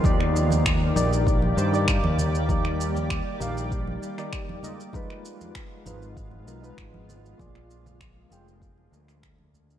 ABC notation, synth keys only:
X:1
M:4/4
L:1/16
Q:1/4=98
K:Eb
V:1 name="Synth keys"
[E,EGd]6 [E,EGd]4 [E,EGc] [E,EGd]4- [E,EGd] | [E,EGd]6 [E,EGf]4- [E,EGf] [E,EGd]3 [A,EFe] z | [A,EF_c]6 [A,EFc]4 [A,EFB] [A,EFc]4- [A,EFc] | [B,FAd]6 [B,FAg]4- [B,FAg] z4 z |]